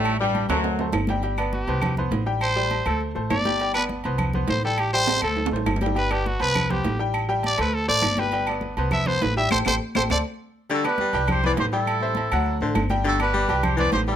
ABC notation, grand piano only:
X:1
M:4/4
L:1/8
Q:1/4=203
K:G
V:1 name="Grand piano"
[G,Gg] [G,Gg]2 [A,Ac]2 [A,Ac]2 [G,Gg] | [G,Gg] [B,Bd]2 [B,Bc]2 [B,Bc]2 [G,Gg]- | [G,Gg] [G,Gg]2 [A,Ac]2 [A,Ac]2 [G,Gg] | [G,Gg] [B,Bd]2 [B,Bc]2 [B,Bc]2 [G,Gg]- |
[G,Gg] [G,Gg]2 [A,Ac]2 [A,Ac]2 [G,Gg] | [G,Gg] [B,Bd]2 [B,Bc]2 [B,Bc]2 [G,Gg]- | [G,Gg] [G,Gg]2 [A,Ac]2 [A,Ac]2 [G,Gg] | [G,Gg] [B,Bd]2 [B,Bc]2 [B,Bc]2 [G,Gg] |
[GAc] [GAc] z [GAc] [Acd] z3 | [G,Gg] [B,Bd]2 [G,Gg]2 [B,Bc]2 [G,Gg]- | [G,Gg] [Cce]2 [F,Ff]2 [A,Ac]2 [G,Gg] | [G,Gg] [B,Bd]2 [G,Gg]2 [B,Bc]2 [G,Gg] |]